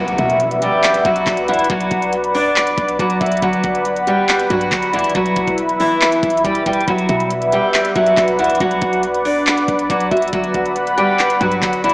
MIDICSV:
0, 0, Header, 1, 7, 480
1, 0, Start_track
1, 0, Key_signature, 2, "minor"
1, 0, Tempo, 431655
1, 1887, Time_signature, 4, 2, 24, 8
1, 13275, End_track
2, 0, Start_track
2, 0, Title_t, "Soft synth lead"
2, 0, Program_c, 0, 80
2, 200, Note_on_c, 0, 76, 102
2, 1599, Note_off_c, 0, 76, 0
2, 1651, Note_on_c, 0, 78, 80
2, 1877, Note_off_c, 0, 78, 0
2, 3328, Note_on_c, 0, 74, 91
2, 3556, Note_off_c, 0, 74, 0
2, 3565, Note_on_c, 0, 76, 78
2, 3794, Note_off_c, 0, 76, 0
2, 4049, Note_on_c, 0, 78, 101
2, 5443, Note_off_c, 0, 78, 0
2, 5487, Note_on_c, 0, 74, 72
2, 5715, Note_off_c, 0, 74, 0
2, 7881, Note_on_c, 0, 76, 101
2, 9280, Note_off_c, 0, 76, 0
2, 9331, Note_on_c, 0, 78, 82
2, 9557, Note_off_c, 0, 78, 0
2, 11007, Note_on_c, 0, 74, 85
2, 11235, Note_off_c, 0, 74, 0
2, 11244, Note_on_c, 0, 76, 77
2, 11474, Note_off_c, 0, 76, 0
2, 11728, Note_on_c, 0, 78, 100
2, 13123, Note_off_c, 0, 78, 0
2, 13166, Note_on_c, 0, 74, 73
2, 13275, Note_off_c, 0, 74, 0
2, 13275, End_track
3, 0, Start_track
3, 0, Title_t, "Analog synth pad"
3, 0, Program_c, 1, 89
3, 0, Note_on_c, 1, 71, 80
3, 0, Note_on_c, 1, 74, 80
3, 0, Note_on_c, 1, 78, 85
3, 0, Note_on_c, 1, 83, 94
3, 3769, Note_off_c, 1, 71, 0
3, 3770, Note_off_c, 1, 78, 0
3, 3807, Note_on_c, 1, 78, 76
3, 3808, Note_on_c, 1, 71, 87
3, 5684, Note_off_c, 1, 74, 0
3, 5708, Note_off_c, 1, 71, 0
3, 5708, Note_off_c, 1, 78, 0
3, 5726, Note_on_c, 1, 64, 86
3, 5726, Note_on_c, 1, 71, 80
3, 5727, Note_on_c, 1, 76, 75
3, 7627, Note_off_c, 1, 64, 0
3, 7627, Note_off_c, 1, 71, 0
3, 7628, Note_off_c, 1, 76, 0
3, 7645, Note_on_c, 1, 74, 79
3, 7646, Note_on_c, 1, 71, 79
3, 7646, Note_on_c, 1, 78, 84
3, 11443, Note_off_c, 1, 83, 0
3, 11448, Note_off_c, 1, 71, 0
3, 11448, Note_off_c, 1, 78, 0
3, 11485, Note_on_c, 1, 78, 78
3, 11486, Note_on_c, 1, 83, 95
3, 11487, Note_on_c, 1, 71, 86
3, 13275, Note_off_c, 1, 71, 0
3, 13275, Note_off_c, 1, 74, 0
3, 13275, Note_off_c, 1, 78, 0
3, 13275, Note_off_c, 1, 83, 0
3, 13275, End_track
4, 0, Start_track
4, 0, Title_t, "Steel-string acoustic guitar"
4, 0, Program_c, 2, 25
4, 0, Note_on_c, 2, 54, 77
4, 0, Note_on_c, 2, 66, 101
4, 420, Note_off_c, 2, 66, 0
4, 425, Note_off_c, 2, 54, 0
4, 692, Note_on_c, 2, 67, 79
4, 701, Note_on_c, 2, 55, 70
4, 1141, Note_off_c, 2, 67, 0
4, 1146, Note_off_c, 2, 55, 0
4, 1169, Note_on_c, 2, 66, 88
4, 1178, Note_on_c, 2, 54, 64
4, 1619, Note_off_c, 2, 66, 0
4, 1624, Note_off_c, 2, 54, 0
4, 1653, Note_on_c, 2, 64, 87
4, 1662, Note_on_c, 2, 52, 70
4, 1846, Note_off_c, 2, 64, 0
4, 1852, Note_off_c, 2, 52, 0
4, 1892, Note_on_c, 2, 66, 104
4, 1902, Note_on_c, 2, 54, 91
4, 2341, Note_off_c, 2, 66, 0
4, 2346, Note_off_c, 2, 54, 0
4, 2609, Note_on_c, 2, 62, 76
4, 2618, Note_on_c, 2, 74, 61
4, 3285, Note_off_c, 2, 62, 0
4, 3290, Note_off_c, 2, 74, 0
4, 3333, Note_on_c, 2, 66, 84
4, 3341, Note_on_c, 2, 54, 63
4, 3527, Note_off_c, 2, 66, 0
4, 3531, Note_off_c, 2, 54, 0
4, 3566, Note_on_c, 2, 66, 88
4, 3576, Note_on_c, 2, 54, 65
4, 3763, Note_off_c, 2, 66, 0
4, 3768, Note_off_c, 2, 54, 0
4, 3807, Note_on_c, 2, 66, 101
4, 3815, Note_on_c, 2, 54, 77
4, 4258, Note_off_c, 2, 66, 0
4, 4263, Note_off_c, 2, 54, 0
4, 4526, Note_on_c, 2, 67, 89
4, 4534, Note_on_c, 2, 55, 68
4, 4978, Note_off_c, 2, 67, 0
4, 4982, Note_off_c, 2, 55, 0
4, 5008, Note_on_c, 2, 66, 86
4, 5017, Note_on_c, 2, 54, 66
4, 5459, Note_off_c, 2, 66, 0
4, 5464, Note_off_c, 2, 54, 0
4, 5487, Note_on_c, 2, 64, 85
4, 5496, Note_on_c, 2, 52, 69
4, 5683, Note_off_c, 2, 64, 0
4, 5688, Note_off_c, 2, 52, 0
4, 5725, Note_on_c, 2, 66, 103
4, 5734, Note_on_c, 2, 54, 87
4, 6177, Note_off_c, 2, 66, 0
4, 6182, Note_off_c, 2, 54, 0
4, 6449, Note_on_c, 2, 64, 85
4, 6457, Note_on_c, 2, 52, 64
4, 7125, Note_off_c, 2, 64, 0
4, 7129, Note_off_c, 2, 52, 0
4, 7166, Note_on_c, 2, 67, 76
4, 7175, Note_on_c, 2, 55, 59
4, 7362, Note_off_c, 2, 67, 0
4, 7368, Note_off_c, 2, 55, 0
4, 7409, Note_on_c, 2, 67, 79
4, 7418, Note_on_c, 2, 55, 69
4, 7604, Note_off_c, 2, 67, 0
4, 7610, Note_off_c, 2, 55, 0
4, 7651, Note_on_c, 2, 66, 104
4, 7660, Note_on_c, 2, 54, 74
4, 8101, Note_off_c, 2, 66, 0
4, 8105, Note_off_c, 2, 54, 0
4, 8372, Note_on_c, 2, 67, 78
4, 8381, Note_on_c, 2, 55, 67
4, 8821, Note_off_c, 2, 67, 0
4, 8826, Note_off_c, 2, 55, 0
4, 8847, Note_on_c, 2, 66, 92
4, 8856, Note_on_c, 2, 54, 68
4, 9298, Note_off_c, 2, 66, 0
4, 9303, Note_off_c, 2, 54, 0
4, 9330, Note_on_c, 2, 64, 84
4, 9338, Note_on_c, 2, 52, 68
4, 9525, Note_off_c, 2, 64, 0
4, 9529, Note_off_c, 2, 52, 0
4, 9570, Note_on_c, 2, 66, 107
4, 9579, Note_on_c, 2, 54, 87
4, 10020, Note_off_c, 2, 66, 0
4, 10025, Note_off_c, 2, 54, 0
4, 10287, Note_on_c, 2, 62, 76
4, 10295, Note_on_c, 2, 74, 60
4, 10964, Note_off_c, 2, 62, 0
4, 10968, Note_off_c, 2, 74, 0
4, 11011, Note_on_c, 2, 66, 83
4, 11020, Note_on_c, 2, 54, 64
4, 11205, Note_off_c, 2, 66, 0
4, 11211, Note_off_c, 2, 54, 0
4, 11243, Note_on_c, 2, 66, 88
4, 11253, Note_on_c, 2, 54, 66
4, 11441, Note_off_c, 2, 66, 0
4, 11446, Note_off_c, 2, 54, 0
4, 11485, Note_on_c, 2, 66, 93
4, 11494, Note_on_c, 2, 54, 74
4, 11937, Note_off_c, 2, 66, 0
4, 11942, Note_off_c, 2, 54, 0
4, 12204, Note_on_c, 2, 67, 92
4, 12212, Note_on_c, 2, 55, 70
4, 12657, Note_off_c, 2, 67, 0
4, 12661, Note_off_c, 2, 55, 0
4, 12686, Note_on_c, 2, 66, 87
4, 12696, Note_on_c, 2, 54, 64
4, 13138, Note_off_c, 2, 66, 0
4, 13143, Note_off_c, 2, 54, 0
4, 13165, Note_on_c, 2, 64, 86
4, 13173, Note_on_c, 2, 52, 72
4, 13275, Note_off_c, 2, 52, 0
4, 13275, Note_off_c, 2, 64, 0
4, 13275, End_track
5, 0, Start_track
5, 0, Title_t, "808-style bass"
5, 0, Program_c, 3, 38
5, 0, Note_on_c, 3, 35, 114
5, 198, Note_off_c, 3, 35, 0
5, 207, Note_on_c, 3, 47, 108
5, 783, Note_off_c, 3, 47, 0
5, 1168, Note_on_c, 3, 35, 101
5, 1398, Note_off_c, 3, 35, 0
5, 1409, Note_on_c, 3, 35, 105
5, 1768, Note_on_c, 3, 34, 105
5, 1784, Note_off_c, 3, 35, 0
5, 1882, Note_off_c, 3, 34, 0
5, 1888, Note_on_c, 3, 35, 114
5, 2118, Note_off_c, 3, 35, 0
5, 2127, Note_on_c, 3, 35, 109
5, 2847, Note_on_c, 3, 34, 103
5, 2864, Note_off_c, 3, 35, 0
5, 3075, Note_off_c, 3, 34, 0
5, 3087, Note_on_c, 3, 35, 108
5, 3318, Note_off_c, 3, 35, 0
5, 3329, Note_on_c, 3, 35, 105
5, 3558, Note_off_c, 3, 35, 0
5, 3569, Note_on_c, 3, 35, 111
5, 3798, Note_off_c, 3, 35, 0
5, 3807, Note_on_c, 3, 31, 113
5, 4038, Note_off_c, 3, 31, 0
5, 4046, Note_on_c, 3, 31, 108
5, 4969, Note_off_c, 3, 31, 0
5, 5007, Note_on_c, 3, 43, 105
5, 5238, Note_off_c, 3, 43, 0
5, 5247, Note_on_c, 3, 31, 106
5, 5487, Note_on_c, 3, 38, 109
5, 5504, Note_off_c, 3, 31, 0
5, 5608, Note_on_c, 3, 31, 102
5, 5625, Note_off_c, 3, 38, 0
5, 5722, Note_off_c, 3, 31, 0
5, 5727, Note_on_c, 3, 28, 109
5, 5958, Note_off_c, 3, 28, 0
5, 5967, Note_on_c, 3, 28, 108
5, 6543, Note_off_c, 3, 28, 0
5, 6928, Note_on_c, 3, 35, 103
5, 7158, Note_off_c, 3, 35, 0
5, 7167, Note_on_c, 3, 28, 103
5, 7398, Note_off_c, 3, 28, 0
5, 7409, Note_on_c, 3, 28, 108
5, 7638, Note_off_c, 3, 28, 0
5, 7648, Note_on_c, 3, 35, 118
5, 7878, Note_off_c, 3, 35, 0
5, 7887, Note_on_c, 3, 47, 109
5, 8463, Note_off_c, 3, 47, 0
5, 8847, Note_on_c, 3, 35, 105
5, 9078, Note_off_c, 3, 35, 0
5, 9088, Note_on_c, 3, 35, 108
5, 9447, Note_on_c, 3, 34, 106
5, 9464, Note_off_c, 3, 35, 0
5, 9561, Note_off_c, 3, 34, 0
5, 9567, Note_on_c, 3, 35, 118
5, 9798, Note_off_c, 3, 35, 0
5, 9806, Note_on_c, 3, 35, 112
5, 10526, Note_on_c, 3, 34, 100
5, 10543, Note_off_c, 3, 35, 0
5, 10755, Note_off_c, 3, 34, 0
5, 10767, Note_on_c, 3, 35, 99
5, 10998, Note_off_c, 3, 35, 0
5, 11008, Note_on_c, 3, 35, 103
5, 11238, Note_off_c, 3, 35, 0
5, 11248, Note_on_c, 3, 35, 113
5, 11478, Note_off_c, 3, 35, 0
5, 11487, Note_on_c, 3, 31, 115
5, 11718, Note_off_c, 3, 31, 0
5, 11727, Note_on_c, 3, 31, 104
5, 12649, Note_off_c, 3, 31, 0
5, 12686, Note_on_c, 3, 43, 106
5, 12917, Note_off_c, 3, 43, 0
5, 12927, Note_on_c, 3, 31, 106
5, 13167, Note_on_c, 3, 38, 103
5, 13183, Note_off_c, 3, 31, 0
5, 13275, Note_off_c, 3, 38, 0
5, 13275, End_track
6, 0, Start_track
6, 0, Title_t, "Impact"
6, 0, Program_c, 4, 103
6, 0, Note_on_c, 4, 60, 87
6, 1887, Note_off_c, 4, 60, 0
6, 13275, End_track
7, 0, Start_track
7, 0, Title_t, "Drums"
7, 87, Note_on_c, 9, 42, 61
7, 198, Note_off_c, 9, 42, 0
7, 203, Note_on_c, 9, 42, 68
7, 207, Note_on_c, 9, 36, 93
7, 314, Note_off_c, 9, 42, 0
7, 319, Note_off_c, 9, 36, 0
7, 330, Note_on_c, 9, 42, 56
7, 441, Note_off_c, 9, 42, 0
7, 444, Note_on_c, 9, 42, 75
7, 555, Note_off_c, 9, 42, 0
7, 570, Note_on_c, 9, 42, 54
7, 681, Note_off_c, 9, 42, 0
7, 688, Note_on_c, 9, 42, 83
7, 800, Note_off_c, 9, 42, 0
7, 929, Note_on_c, 9, 39, 108
7, 932, Note_on_c, 9, 42, 90
7, 1040, Note_off_c, 9, 39, 0
7, 1043, Note_off_c, 9, 42, 0
7, 1048, Note_on_c, 9, 42, 65
7, 1159, Note_off_c, 9, 42, 0
7, 1167, Note_on_c, 9, 42, 75
7, 1168, Note_on_c, 9, 36, 99
7, 1279, Note_off_c, 9, 36, 0
7, 1279, Note_off_c, 9, 42, 0
7, 1288, Note_on_c, 9, 42, 61
7, 1399, Note_off_c, 9, 42, 0
7, 1409, Note_on_c, 9, 36, 99
7, 1409, Note_on_c, 9, 39, 93
7, 1411, Note_on_c, 9, 42, 91
7, 1520, Note_off_c, 9, 36, 0
7, 1520, Note_off_c, 9, 39, 0
7, 1523, Note_off_c, 9, 42, 0
7, 1526, Note_on_c, 9, 42, 62
7, 1637, Note_off_c, 9, 42, 0
7, 1648, Note_on_c, 9, 42, 68
7, 1708, Note_off_c, 9, 42, 0
7, 1708, Note_on_c, 9, 42, 68
7, 1767, Note_off_c, 9, 42, 0
7, 1767, Note_on_c, 9, 42, 68
7, 1827, Note_off_c, 9, 42, 0
7, 1827, Note_on_c, 9, 42, 67
7, 1888, Note_off_c, 9, 42, 0
7, 1888, Note_on_c, 9, 36, 113
7, 1888, Note_on_c, 9, 42, 82
7, 1999, Note_off_c, 9, 36, 0
7, 1999, Note_off_c, 9, 42, 0
7, 2007, Note_on_c, 9, 42, 60
7, 2118, Note_off_c, 9, 42, 0
7, 2123, Note_on_c, 9, 42, 74
7, 2127, Note_on_c, 9, 36, 94
7, 2234, Note_off_c, 9, 42, 0
7, 2239, Note_off_c, 9, 36, 0
7, 2250, Note_on_c, 9, 42, 55
7, 2361, Note_off_c, 9, 42, 0
7, 2364, Note_on_c, 9, 42, 77
7, 2476, Note_off_c, 9, 42, 0
7, 2489, Note_on_c, 9, 42, 56
7, 2601, Note_off_c, 9, 42, 0
7, 2609, Note_on_c, 9, 46, 84
7, 2720, Note_off_c, 9, 46, 0
7, 2848, Note_on_c, 9, 39, 110
7, 2852, Note_on_c, 9, 42, 89
7, 2960, Note_off_c, 9, 39, 0
7, 2963, Note_off_c, 9, 42, 0
7, 2968, Note_on_c, 9, 42, 67
7, 3079, Note_off_c, 9, 42, 0
7, 3087, Note_on_c, 9, 42, 76
7, 3088, Note_on_c, 9, 36, 96
7, 3198, Note_off_c, 9, 42, 0
7, 3199, Note_off_c, 9, 36, 0
7, 3208, Note_on_c, 9, 42, 62
7, 3319, Note_off_c, 9, 42, 0
7, 3328, Note_on_c, 9, 36, 97
7, 3332, Note_on_c, 9, 42, 90
7, 3440, Note_off_c, 9, 36, 0
7, 3443, Note_off_c, 9, 42, 0
7, 3446, Note_on_c, 9, 42, 62
7, 3557, Note_off_c, 9, 42, 0
7, 3568, Note_on_c, 9, 42, 68
7, 3569, Note_on_c, 9, 36, 97
7, 3628, Note_off_c, 9, 42, 0
7, 3628, Note_on_c, 9, 42, 71
7, 3680, Note_off_c, 9, 36, 0
7, 3688, Note_off_c, 9, 42, 0
7, 3688, Note_on_c, 9, 42, 69
7, 3747, Note_off_c, 9, 42, 0
7, 3747, Note_on_c, 9, 42, 67
7, 3807, Note_off_c, 9, 42, 0
7, 3807, Note_on_c, 9, 36, 114
7, 3807, Note_on_c, 9, 42, 82
7, 3918, Note_off_c, 9, 42, 0
7, 3919, Note_off_c, 9, 36, 0
7, 3926, Note_on_c, 9, 42, 59
7, 4037, Note_off_c, 9, 42, 0
7, 4043, Note_on_c, 9, 42, 73
7, 4047, Note_on_c, 9, 36, 93
7, 4154, Note_off_c, 9, 42, 0
7, 4158, Note_off_c, 9, 36, 0
7, 4169, Note_on_c, 9, 42, 58
7, 4280, Note_off_c, 9, 42, 0
7, 4283, Note_on_c, 9, 42, 73
7, 4394, Note_off_c, 9, 42, 0
7, 4408, Note_on_c, 9, 42, 54
7, 4519, Note_off_c, 9, 42, 0
7, 4527, Note_on_c, 9, 42, 85
7, 4638, Note_off_c, 9, 42, 0
7, 4768, Note_on_c, 9, 39, 109
7, 4771, Note_on_c, 9, 42, 84
7, 4879, Note_off_c, 9, 39, 0
7, 4882, Note_off_c, 9, 42, 0
7, 4887, Note_on_c, 9, 42, 62
7, 4998, Note_off_c, 9, 42, 0
7, 5006, Note_on_c, 9, 42, 75
7, 5007, Note_on_c, 9, 36, 95
7, 5118, Note_off_c, 9, 36, 0
7, 5118, Note_off_c, 9, 42, 0
7, 5127, Note_on_c, 9, 42, 64
7, 5238, Note_off_c, 9, 42, 0
7, 5247, Note_on_c, 9, 39, 93
7, 5248, Note_on_c, 9, 36, 98
7, 5250, Note_on_c, 9, 42, 91
7, 5358, Note_off_c, 9, 39, 0
7, 5359, Note_off_c, 9, 36, 0
7, 5361, Note_off_c, 9, 42, 0
7, 5365, Note_on_c, 9, 42, 61
7, 5476, Note_off_c, 9, 42, 0
7, 5487, Note_on_c, 9, 42, 69
7, 5547, Note_off_c, 9, 42, 0
7, 5547, Note_on_c, 9, 42, 67
7, 5606, Note_off_c, 9, 42, 0
7, 5606, Note_on_c, 9, 42, 68
7, 5666, Note_off_c, 9, 42, 0
7, 5666, Note_on_c, 9, 42, 67
7, 5726, Note_off_c, 9, 42, 0
7, 5726, Note_on_c, 9, 42, 80
7, 5727, Note_on_c, 9, 36, 117
7, 5837, Note_off_c, 9, 42, 0
7, 5838, Note_off_c, 9, 36, 0
7, 5845, Note_on_c, 9, 42, 60
7, 5956, Note_off_c, 9, 42, 0
7, 5962, Note_on_c, 9, 42, 70
7, 5967, Note_on_c, 9, 36, 94
7, 6073, Note_off_c, 9, 42, 0
7, 6078, Note_off_c, 9, 36, 0
7, 6087, Note_on_c, 9, 36, 101
7, 6088, Note_on_c, 9, 42, 54
7, 6198, Note_off_c, 9, 36, 0
7, 6200, Note_off_c, 9, 42, 0
7, 6203, Note_on_c, 9, 42, 78
7, 6314, Note_off_c, 9, 42, 0
7, 6328, Note_on_c, 9, 42, 53
7, 6439, Note_off_c, 9, 42, 0
7, 6447, Note_on_c, 9, 46, 86
7, 6558, Note_off_c, 9, 46, 0
7, 6688, Note_on_c, 9, 39, 112
7, 6691, Note_on_c, 9, 42, 87
7, 6799, Note_off_c, 9, 39, 0
7, 6803, Note_off_c, 9, 42, 0
7, 6808, Note_on_c, 9, 42, 66
7, 6919, Note_off_c, 9, 42, 0
7, 6927, Note_on_c, 9, 36, 97
7, 6928, Note_on_c, 9, 42, 64
7, 7007, Note_off_c, 9, 42, 0
7, 7007, Note_on_c, 9, 42, 65
7, 7039, Note_off_c, 9, 36, 0
7, 7087, Note_off_c, 9, 42, 0
7, 7087, Note_on_c, 9, 42, 66
7, 7168, Note_on_c, 9, 36, 97
7, 7170, Note_off_c, 9, 42, 0
7, 7170, Note_on_c, 9, 42, 91
7, 7279, Note_off_c, 9, 36, 0
7, 7281, Note_off_c, 9, 42, 0
7, 7284, Note_on_c, 9, 42, 62
7, 7395, Note_off_c, 9, 42, 0
7, 7406, Note_on_c, 9, 42, 81
7, 7408, Note_on_c, 9, 36, 96
7, 7487, Note_off_c, 9, 42, 0
7, 7487, Note_on_c, 9, 42, 65
7, 7519, Note_off_c, 9, 36, 0
7, 7567, Note_off_c, 9, 42, 0
7, 7567, Note_on_c, 9, 42, 47
7, 7647, Note_off_c, 9, 42, 0
7, 7647, Note_on_c, 9, 42, 80
7, 7648, Note_on_c, 9, 36, 118
7, 7758, Note_off_c, 9, 42, 0
7, 7759, Note_off_c, 9, 36, 0
7, 7766, Note_on_c, 9, 42, 58
7, 7877, Note_off_c, 9, 42, 0
7, 7883, Note_on_c, 9, 42, 70
7, 7887, Note_on_c, 9, 36, 92
7, 7994, Note_off_c, 9, 42, 0
7, 7998, Note_off_c, 9, 36, 0
7, 8009, Note_on_c, 9, 42, 56
7, 8120, Note_off_c, 9, 42, 0
7, 8123, Note_on_c, 9, 42, 76
7, 8234, Note_off_c, 9, 42, 0
7, 8248, Note_on_c, 9, 42, 54
7, 8359, Note_off_c, 9, 42, 0
7, 8366, Note_on_c, 9, 42, 88
7, 8478, Note_off_c, 9, 42, 0
7, 8607, Note_on_c, 9, 39, 111
7, 8610, Note_on_c, 9, 42, 90
7, 8718, Note_off_c, 9, 39, 0
7, 8722, Note_off_c, 9, 42, 0
7, 8727, Note_on_c, 9, 42, 65
7, 8838, Note_off_c, 9, 42, 0
7, 8846, Note_on_c, 9, 42, 75
7, 8847, Note_on_c, 9, 36, 95
7, 8958, Note_off_c, 9, 36, 0
7, 8958, Note_off_c, 9, 42, 0
7, 8967, Note_on_c, 9, 42, 65
7, 9078, Note_off_c, 9, 42, 0
7, 9088, Note_on_c, 9, 36, 96
7, 9088, Note_on_c, 9, 39, 93
7, 9091, Note_on_c, 9, 42, 92
7, 9199, Note_off_c, 9, 36, 0
7, 9199, Note_off_c, 9, 39, 0
7, 9202, Note_off_c, 9, 42, 0
7, 9205, Note_on_c, 9, 42, 65
7, 9316, Note_off_c, 9, 42, 0
7, 9327, Note_on_c, 9, 42, 69
7, 9387, Note_off_c, 9, 42, 0
7, 9387, Note_on_c, 9, 42, 70
7, 9448, Note_off_c, 9, 42, 0
7, 9448, Note_on_c, 9, 42, 66
7, 9508, Note_off_c, 9, 42, 0
7, 9508, Note_on_c, 9, 42, 69
7, 9567, Note_off_c, 9, 42, 0
7, 9567, Note_on_c, 9, 42, 80
7, 9568, Note_on_c, 9, 36, 113
7, 9679, Note_off_c, 9, 36, 0
7, 9679, Note_off_c, 9, 42, 0
7, 9686, Note_on_c, 9, 42, 57
7, 9797, Note_off_c, 9, 42, 0
7, 9803, Note_on_c, 9, 42, 72
7, 9807, Note_on_c, 9, 36, 96
7, 9914, Note_off_c, 9, 42, 0
7, 9918, Note_off_c, 9, 36, 0
7, 9929, Note_on_c, 9, 42, 55
7, 10041, Note_off_c, 9, 42, 0
7, 10043, Note_on_c, 9, 42, 75
7, 10154, Note_off_c, 9, 42, 0
7, 10169, Note_on_c, 9, 42, 56
7, 10280, Note_off_c, 9, 42, 0
7, 10288, Note_on_c, 9, 46, 86
7, 10399, Note_off_c, 9, 46, 0
7, 10528, Note_on_c, 9, 39, 114
7, 10531, Note_on_c, 9, 42, 89
7, 10639, Note_off_c, 9, 39, 0
7, 10642, Note_off_c, 9, 42, 0
7, 10647, Note_on_c, 9, 42, 64
7, 10758, Note_off_c, 9, 42, 0
7, 10766, Note_on_c, 9, 42, 77
7, 10767, Note_on_c, 9, 36, 100
7, 10878, Note_off_c, 9, 36, 0
7, 10878, Note_off_c, 9, 42, 0
7, 10886, Note_on_c, 9, 42, 63
7, 10998, Note_off_c, 9, 42, 0
7, 11007, Note_on_c, 9, 36, 95
7, 11010, Note_on_c, 9, 42, 92
7, 11119, Note_off_c, 9, 36, 0
7, 11121, Note_off_c, 9, 42, 0
7, 11125, Note_on_c, 9, 42, 64
7, 11236, Note_off_c, 9, 42, 0
7, 11247, Note_on_c, 9, 42, 68
7, 11248, Note_on_c, 9, 36, 98
7, 11307, Note_off_c, 9, 42, 0
7, 11307, Note_on_c, 9, 42, 67
7, 11359, Note_off_c, 9, 36, 0
7, 11367, Note_off_c, 9, 42, 0
7, 11367, Note_on_c, 9, 42, 69
7, 11427, Note_off_c, 9, 42, 0
7, 11427, Note_on_c, 9, 42, 68
7, 11486, Note_off_c, 9, 42, 0
7, 11486, Note_on_c, 9, 42, 79
7, 11487, Note_on_c, 9, 36, 117
7, 11597, Note_off_c, 9, 42, 0
7, 11598, Note_off_c, 9, 36, 0
7, 11605, Note_on_c, 9, 42, 60
7, 11716, Note_off_c, 9, 42, 0
7, 11723, Note_on_c, 9, 42, 70
7, 11726, Note_on_c, 9, 36, 95
7, 11834, Note_off_c, 9, 42, 0
7, 11838, Note_off_c, 9, 36, 0
7, 11849, Note_on_c, 9, 42, 57
7, 11960, Note_off_c, 9, 42, 0
7, 11963, Note_on_c, 9, 42, 75
7, 12074, Note_off_c, 9, 42, 0
7, 12088, Note_on_c, 9, 42, 54
7, 12199, Note_off_c, 9, 42, 0
7, 12206, Note_on_c, 9, 42, 86
7, 12317, Note_off_c, 9, 42, 0
7, 12446, Note_on_c, 9, 39, 111
7, 12450, Note_on_c, 9, 42, 88
7, 12557, Note_off_c, 9, 39, 0
7, 12561, Note_off_c, 9, 42, 0
7, 12566, Note_on_c, 9, 42, 66
7, 12677, Note_off_c, 9, 42, 0
7, 12685, Note_on_c, 9, 42, 76
7, 12686, Note_on_c, 9, 36, 99
7, 12796, Note_off_c, 9, 42, 0
7, 12797, Note_off_c, 9, 36, 0
7, 12805, Note_on_c, 9, 42, 64
7, 12916, Note_off_c, 9, 42, 0
7, 12926, Note_on_c, 9, 39, 91
7, 12927, Note_on_c, 9, 36, 97
7, 12929, Note_on_c, 9, 42, 89
7, 13038, Note_off_c, 9, 36, 0
7, 13038, Note_off_c, 9, 39, 0
7, 13040, Note_off_c, 9, 42, 0
7, 13043, Note_on_c, 9, 42, 64
7, 13155, Note_off_c, 9, 42, 0
7, 13166, Note_on_c, 9, 42, 69
7, 13227, Note_off_c, 9, 42, 0
7, 13227, Note_on_c, 9, 42, 70
7, 13275, Note_off_c, 9, 42, 0
7, 13275, End_track
0, 0, End_of_file